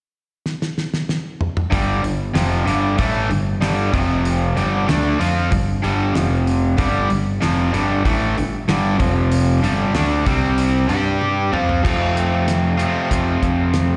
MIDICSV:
0, 0, Header, 1, 4, 480
1, 0, Start_track
1, 0, Tempo, 632911
1, 1304, Time_signature, 4, 2, 24, 8
1, 10593, End_track
2, 0, Start_track
2, 0, Title_t, "Overdriven electric guitar"
2, 0, Program_c, 0, 29
2, 1293, Note_on_c, 0, 43, 73
2, 1299, Note_on_c, 0, 50, 70
2, 1303, Note_on_c, 0, 55, 90
2, 1531, Note_off_c, 0, 43, 0
2, 1534, Note_off_c, 0, 50, 0
2, 1536, Note_off_c, 0, 55, 0
2, 1540, Note_on_c, 0, 43, 58
2, 1542, Note_on_c, 0, 50, 58
2, 1734, Note_off_c, 0, 43, 0
2, 1735, Note_off_c, 0, 50, 0
2, 1771, Note_on_c, 0, 41, 79
2, 1778, Note_on_c, 0, 48, 92
2, 1780, Note_on_c, 0, 53, 97
2, 2010, Note_off_c, 0, 41, 0
2, 2014, Note_off_c, 0, 48, 0
2, 2015, Note_off_c, 0, 53, 0
2, 2016, Note_on_c, 0, 43, 83
2, 2021, Note_on_c, 0, 50, 82
2, 2026, Note_on_c, 0, 55, 85
2, 2252, Note_off_c, 0, 50, 0
2, 2253, Note_off_c, 0, 43, 0
2, 2255, Note_on_c, 0, 45, 79
2, 2258, Note_off_c, 0, 55, 0
2, 2261, Note_on_c, 0, 52, 82
2, 2265, Note_on_c, 0, 57, 88
2, 2492, Note_off_c, 0, 45, 0
2, 2495, Note_off_c, 0, 52, 0
2, 2497, Note_off_c, 0, 57, 0
2, 2502, Note_on_c, 0, 43, 52
2, 2502, Note_on_c, 0, 50, 64
2, 2695, Note_off_c, 0, 43, 0
2, 2695, Note_off_c, 0, 50, 0
2, 2738, Note_on_c, 0, 43, 76
2, 2744, Note_on_c, 0, 50, 90
2, 2747, Note_on_c, 0, 55, 96
2, 2973, Note_off_c, 0, 43, 0
2, 2976, Note_on_c, 0, 41, 78
2, 2977, Note_off_c, 0, 50, 0
2, 2978, Note_off_c, 0, 55, 0
2, 2984, Note_on_c, 0, 48, 67
2, 2990, Note_on_c, 0, 53, 72
2, 3453, Note_off_c, 0, 41, 0
2, 3457, Note_off_c, 0, 48, 0
2, 3457, Note_on_c, 0, 43, 85
2, 3460, Note_off_c, 0, 53, 0
2, 3464, Note_on_c, 0, 50, 85
2, 3468, Note_on_c, 0, 55, 88
2, 3685, Note_off_c, 0, 50, 0
2, 3693, Note_off_c, 0, 43, 0
2, 3695, Note_on_c, 0, 50, 85
2, 3699, Note_off_c, 0, 55, 0
2, 3702, Note_on_c, 0, 57, 79
2, 3708, Note_on_c, 0, 62, 90
2, 3932, Note_off_c, 0, 50, 0
2, 3936, Note_off_c, 0, 57, 0
2, 3939, Note_off_c, 0, 62, 0
2, 3940, Note_on_c, 0, 53, 81
2, 3942, Note_on_c, 0, 60, 93
2, 3950, Note_on_c, 0, 65, 91
2, 4175, Note_off_c, 0, 53, 0
2, 4176, Note_off_c, 0, 60, 0
2, 4179, Note_off_c, 0, 65, 0
2, 4181, Note_on_c, 0, 43, 52
2, 4183, Note_on_c, 0, 50, 67
2, 4375, Note_off_c, 0, 43, 0
2, 4375, Note_off_c, 0, 50, 0
2, 4419, Note_on_c, 0, 43, 75
2, 4428, Note_on_c, 0, 50, 85
2, 4431, Note_on_c, 0, 55, 89
2, 4666, Note_off_c, 0, 43, 0
2, 4666, Note_on_c, 0, 41, 71
2, 4672, Note_off_c, 0, 50, 0
2, 4672, Note_on_c, 0, 48, 86
2, 4679, Note_off_c, 0, 55, 0
2, 4679, Note_on_c, 0, 53, 89
2, 5137, Note_off_c, 0, 41, 0
2, 5140, Note_off_c, 0, 48, 0
2, 5140, Note_on_c, 0, 43, 76
2, 5143, Note_on_c, 0, 50, 76
2, 5144, Note_off_c, 0, 53, 0
2, 5150, Note_on_c, 0, 55, 90
2, 5373, Note_off_c, 0, 43, 0
2, 5376, Note_off_c, 0, 50, 0
2, 5379, Note_off_c, 0, 55, 0
2, 5382, Note_on_c, 0, 43, 59
2, 5388, Note_on_c, 0, 50, 54
2, 5575, Note_off_c, 0, 43, 0
2, 5578, Note_off_c, 0, 50, 0
2, 5619, Note_on_c, 0, 41, 88
2, 5628, Note_on_c, 0, 48, 84
2, 5628, Note_on_c, 0, 53, 96
2, 5854, Note_off_c, 0, 41, 0
2, 5858, Note_off_c, 0, 48, 0
2, 5859, Note_off_c, 0, 53, 0
2, 5861, Note_on_c, 0, 43, 82
2, 5865, Note_on_c, 0, 50, 80
2, 5869, Note_on_c, 0, 55, 82
2, 6095, Note_off_c, 0, 43, 0
2, 6097, Note_off_c, 0, 50, 0
2, 6099, Note_off_c, 0, 55, 0
2, 6100, Note_on_c, 0, 45, 77
2, 6108, Note_on_c, 0, 52, 92
2, 6112, Note_on_c, 0, 57, 87
2, 6335, Note_off_c, 0, 45, 0
2, 6338, Note_off_c, 0, 52, 0
2, 6340, Note_off_c, 0, 57, 0
2, 6353, Note_on_c, 0, 43, 62
2, 6353, Note_on_c, 0, 50, 62
2, 6540, Note_off_c, 0, 43, 0
2, 6540, Note_off_c, 0, 50, 0
2, 6585, Note_on_c, 0, 43, 81
2, 6590, Note_on_c, 0, 50, 84
2, 6597, Note_on_c, 0, 55, 96
2, 6816, Note_off_c, 0, 43, 0
2, 6816, Note_on_c, 0, 41, 71
2, 6823, Note_off_c, 0, 50, 0
2, 6823, Note_on_c, 0, 48, 77
2, 6830, Note_off_c, 0, 55, 0
2, 6830, Note_on_c, 0, 53, 81
2, 7292, Note_off_c, 0, 41, 0
2, 7296, Note_off_c, 0, 48, 0
2, 7297, Note_on_c, 0, 43, 71
2, 7299, Note_off_c, 0, 53, 0
2, 7303, Note_on_c, 0, 50, 79
2, 7308, Note_on_c, 0, 55, 91
2, 7533, Note_off_c, 0, 43, 0
2, 7533, Note_off_c, 0, 50, 0
2, 7538, Note_off_c, 0, 55, 0
2, 7542, Note_on_c, 0, 50, 77
2, 7546, Note_on_c, 0, 57, 91
2, 7552, Note_on_c, 0, 62, 85
2, 7775, Note_off_c, 0, 50, 0
2, 7777, Note_off_c, 0, 57, 0
2, 7780, Note_off_c, 0, 62, 0
2, 7781, Note_on_c, 0, 48, 78
2, 7788, Note_on_c, 0, 55, 90
2, 7790, Note_on_c, 0, 60, 93
2, 8246, Note_off_c, 0, 55, 0
2, 8255, Note_off_c, 0, 48, 0
2, 8255, Note_on_c, 0, 55, 81
2, 8264, Note_off_c, 0, 60, 0
2, 8264, Note_on_c, 0, 62, 91
2, 8268, Note_on_c, 0, 67, 86
2, 8732, Note_off_c, 0, 55, 0
2, 8734, Note_on_c, 0, 53, 82
2, 8736, Note_off_c, 0, 62, 0
2, 8738, Note_off_c, 0, 67, 0
2, 8739, Note_on_c, 0, 60, 75
2, 8745, Note_on_c, 0, 65, 76
2, 8965, Note_on_c, 0, 41, 67
2, 8966, Note_off_c, 0, 53, 0
2, 8969, Note_on_c, 0, 48, 65
2, 8974, Note_off_c, 0, 60, 0
2, 8976, Note_off_c, 0, 65, 0
2, 8977, Note_on_c, 0, 53, 66
2, 8979, Note_on_c, 0, 57, 76
2, 8989, Note_on_c, 0, 60, 73
2, 8994, Note_on_c, 0, 65, 77
2, 9681, Note_off_c, 0, 41, 0
2, 9682, Note_off_c, 0, 48, 0
2, 9684, Note_off_c, 0, 65, 0
2, 9687, Note_off_c, 0, 57, 0
2, 9687, Note_off_c, 0, 60, 0
2, 9688, Note_on_c, 0, 65, 72
2, 9696, Note_on_c, 0, 60, 73
2, 9701, Note_on_c, 0, 57, 64
2, 9708, Note_off_c, 0, 53, 0
2, 9711, Note_on_c, 0, 53, 70
2, 9713, Note_on_c, 0, 48, 61
2, 9720, Note_on_c, 0, 41, 54
2, 10593, Note_off_c, 0, 41, 0
2, 10593, Note_off_c, 0, 48, 0
2, 10593, Note_off_c, 0, 53, 0
2, 10593, Note_off_c, 0, 57, 0
2, 10593, Note_off_c, 0, 60, 0
2, 10593, Note_off_c, 0, 65, 0
2, 10593, End_track
3, 0, Start_track
3, 0, Title_t, "Picked electric bass"
3, 0, Program_c, 1, 34
3, 1308, Note_on_c, 1, 31, 81
3, 1529, Note_off_c, 1, 31, 0
3, 1538, Note_on_c, 1, 31, 64
3, 1764, Note_off_c, 1, 31, 0
3, 1780, Note_on_c, 1, 29, 89
3, 2005, Note_off_c, 1, 29, 0
3, 2015, Note_on_c, 1, 31, 81
3, 2242, Note_off_c, 1, 31, 0
3, 2267, Note_on_c, 1, 33, 72
3, 2489, Note_off_c, 1, 33, 0
3, 2497, Note_on_c, 1, 31, 67
3, 2723, Note_off_c, 1, 31, 0
3, 2738, Note_on_c, 1, 31, 84
3, 2964, Note_off_c, 1, 31, 0
3, 2982, Note_on_c, 1, 29, 90
3, 3432, Note_off_c, 1, 29, 0
3, 3463, Note_on_c, 1, 31, 72
3, 3686, Note_off_c, 1, 31, 0
3, 3708, Note_on_c, 1, 38, 85
3, 3929, Note_off_c, 1, 38, 0
3, 3943, Note_on_c, 1, 41, 78
3, 4167, Note_off_c, 1, 41, 0
3, 4189, Note_on_c, 1, 31, 74
3, 4410, Note_off_c, 1, 31, 0
3, 4428, Note_on_c, 1, 31, 89
3, 4649, Note_off_c, 1, 31, 0
3, 4668, Note_on_c, 1, 29, 83
3, 5116, Note_off_c, 1, 29, 0
3, 5145, Note_on_c, 1, 31, 91
3, 5368, Note_off_c, 1, 31, 0
3, 5389, Note_on_c, 1, 31, 64
3, 5610, Note_off_c, 1, 31, 0
3, 5628, Note_on_c, 1, 29, 90
3, 5849, Note_off_c, 1, 29, 0
3, 5872, Note_on_c, 1, 31, 75
3, 6091, Note_off_c, 1, 31, 0
3, 6104, Note_on_c, 1, 33, 85
3, 6327, Note_off_c, 1, 33, 0
3, 6349, Note_on_c, 1, 31, 66
3, 6570, Note_off_c, 1, 31, 0
3, 6584, Note_on_c, 1, 31, 87
3, 6806, Note_off_c, 1, 31, 0
3, 6828, Note_on_c, 1, 29, 82
3, 7275, Note_off_c, 1, 29, 0
3, 7300, Note_on_c, 1, 31, 74
3, 7524, Note_off_c, 1, 31, 0
3, 7540, Note_on_c, 1, 38, 87
3, 7765, Note_off_c, 1, 38, 0
3, 7786, Note_on_c, 1, 36, 78
3, 8234, Note_off_c, 1, 36, 0
3, 8264, Note_on_c, 1, 43, 74
3, 8713, Note_off_c, 1, 43, 0
3, 8742, Note_on_c, 1, 41, 90
3, 8966, Note_off_c, 1, 41, 0
3, 8987, Note_on_c, 1, 41, 86
3, 9739, Note_off_c, 1, 41, 0
3, 9944, Note_on_c, 1, 41, 74
3, 10133, Note_off_c, 1, 41, 0
3, 10181, Note_on_c, 1, 41, 70
3, 10560, Note_off_c, 1, 41, 0
3, 10593, End_track
4, 0, Start_track
4, 0, Title_t, "Drums"
4, 347, Note_on_c, 9, 38, 58
4, 423, Note_off_c, 9, 38, 0
4, 470, Note_on_c, 9, 38, 69
4, 546, Note_off_c, 9, 38, 0
4, 590, Note_on_c, 9, 38, 64
4, 665, Note_off_c, 9, 38, 0
4, 710, Note_on_c, 9, 38, 74
4, 786, Note_off_c, 9, 38, 0
4, 828, Note_on_c, 9, 38, 80
4, 904, Note_off_c, 9, 38, 0
4, 1067, Note_on_c, 9, 45, 86
4, 1143, Note_off_c, 9, 45, 0
4, 1189, Note_on_c, 9, 45, 101
4, 1265, Note_off_c, 9, 45, 0
4, 1307, Note_on_c, 9, 36, 106
4, 1307, Note_on_c, 9, 46, 62
4, 1383, Note_off_c, 9, 36, 0
4, 1383, Note_off_c, 9, 46, 0
4, 1548, Note_on_c, 9, 46, 41
4, 1624, Note_off_c, 9, 46, 0
4, 1785, Note_on_c, 9, 46, 60
4, 1786, Note_on_c, 9, 38, 92
4, 1861, Note_off_c, 9, 46, 0
4, 1862, Note_off_c, 9, 38, 0
4, 2028, Note_on_c, 9, 46, 47
4, 2104, Note_off_c, 9, 46, 0
4, 2263, Note_on_c, 9, 46, 57
4, 2266, Note_on_c, 9, 36, 92
4, 2339, Note_off_c, 9, 46, 0
4, 2342, Note_off_c, 9, 36, 0
4, 2508, Note_on_c, 9, 46, 41
4, 2584, Note_off_c, 9, 46, 0
4, 2746, Note_on_c, 9, 46, 64
4, 2748, Note_on_c, 9, 38, 98
4, 2822, Note_off_c, 9, 46, 0
4, 2824, Note_off_c, 9, 38, 0
4, 2985, Note_on_c, 9, 36, 100
4, 2987, Note_on_c, 9, 46, 49
4, 3061, Note_off_c, 9, 36, 0
4, 3063, Note_off_c, 9, 46, 0
4, 3226, Note_on_c, 9, 46, 66
4, 3302, Note_off_c, 9, 46, 0
4, 3467, Note_on_c, 9, 46, 41
4, 3543, Note_off_c, 9, 46, 0
4, 3708, Note_on_c, 9, 46, 60
4, 3710, Note_on_c, 9, 38, 95
4, 3784, Note_off_c, 9, 46, 0
4, 3785, Note_off_c, 9, 38, 0
4, 3950, Note_on_c, 9, 46, 49
4, 4026, Note_off_c, 9, 46, 0
4, 4185, Note_on_c, 9, 46, 55
4, 4187, Note_on_c, 9, 36, 101
4, 4261, Note_off_c, 9, 46, 0
4, 4262, Note_off_c, 9, 36, 0
4, 4429, Note_on_c, 9, 46, 39
4, 4504, Note_off_c, 9, 46, 0
4, 4667, Note_on_c, 9, 46, 63
4, 4669, Note_on_c, 9, 38, 107
4, 4743, Note_off_c, 9, 46, 0
4, 4744, Note_off_c, 9, 38, 0
4, 4909, Note_on_c, 9, 46, 46
4, 4985, Note_off_c, 9, 46, 0
4, 5144, Note_on_c, 9, 46, 71
4, 5146, Note_on_c, 9, 36, 109
4, 5220, Note_off_c, 9, 46, 0
4, 5222, Note_off_c, 9, 36, 0
4, 5386, Note_on_c, 9, 46, 45
4, 5462, Note_off_c, 9, 46, 0
4, 5628, Note_on_c, 9, 46, 54
4, 5629, Note_on_c, 9, 38, 89
4, 5703, Note_off_c, 9, 46, 0
4, 5705, Note_off_c, 9, 38, 0
4, 5870, Note_on_c, 9, 46, 47
4, 5945, Note_off_c, 9, 46, 0
4, 6108, Note_on_c, 9, 36, 93
4, 6110, Note_on_c, 9, 46, 60
4, 6184, Note_off_c, 9, 36, 0
4, 6186, Note_off_c, 9, 46, 0
4, 6353, Note_on_c, 9, 46, 42
4, 6429, Note_off_c, 9, 46, 0
4, 6587, Note_on_c, 9, 46, 64
4, 6589, Note_on_c, 9, 38, 106
4, 6663, Note_off_c, 9, 46, 0
4, 6665, Note_off_c, 9, 38, 0
4, 6824, Note_on_c, 9, 36, 99
4, 6824, Note_on_c, 9, 46, 48
4, 6899, Note_off_c, 9, 46, 0
4, 6900, Note_off_c, 9, 36, 0
4, 7065, Note_on_c, 9, 46, 69
4, 7141, Note_off_c, 9, 46, 0
4, 7309, Note_on_c, 9, 46, 46
4, 7385, Note_off_c, 9, 46, 0
4, 7543, Note_on_c, 9, 46, 63
4, 7545, Note_on_c, 9, 38, 94
4, 7619, Note_off_c, 9, 46, 0
4, 7621, Note_off_c, 9, 38, 0
4, 7785, Note_on_c, 9, 36, 98
4, 7789, Note_on_c, 9, 46, 47
4, 7861, Note_off_c, 9, 36, 0
4, 7865, Note_off_c, 9, 46, 0
4, 8023, Note_on_c, 9, 46, 60
4, 8099, Note_off_c, 9, 46, 0
4, 8260, Note_on_c, 9, 46, 39
4, 8335, Note_off_c, 9, 46, 0
4, 8506, Note_on_c, 9, 48, 50
4, 8582, Note_off_c, 9, 48, 0
4, 8749, Note_on_c, 9, 45, 83
4, 8824, Note_off_c, 9, 45, 0
4, 8867, Note_on_c, 9, 43, 76
4, 8943, Note_off_c, 9, 43, 0
4, 8986, Note_on_c, 9, 36, 108
4, 8993, Note_on_c, 9, 49, 85
4, 9062, Note_off_c, 9, 36, 0
4, 9068, Note_off_c, 9, 49, 0
4, 9230, Note_on_c, 9, 42, 50
4, 9306, Note_off_c, 9, 42, 0
4, 9464, Note_on_c, 9, 42, 70
4, 9465, Note_on_c, 9, 38, 82
4, 9540, Note_off_c, 9, 42, 0
4, 9541, Note_off_c, 9, 38, 0
4, 9703, Note_on_c, 9, 42, 53
4, 9779, Note_off_c, 9, 42, 0
4, 9943, Note_on_c, 9, 36, 76
4, 9944, Note_on_c, 9, 42, 77
4, 10018, Note_off_c, 9, 36, 0
4, 10020, Note_off_c, 9, 42, 0
4, 10182, Note_on_c, 9, 36, 66
4, 10183, Note_on_c, 9, 42, 43
4, 10258, Note_off_c, 9, 36, 0
4, 10259, Note_off_c, 9, 42, 0
4, 10418, Note_on_c, 9, 42, 72
4, 10420, Note_on_c, 9, 38, 105
4, 10494, Note_off_c, 9, 42, 0
4, 10496, Note_off_c, 9, 38, 0
4, 10593, End_track
0, 0, End_of_file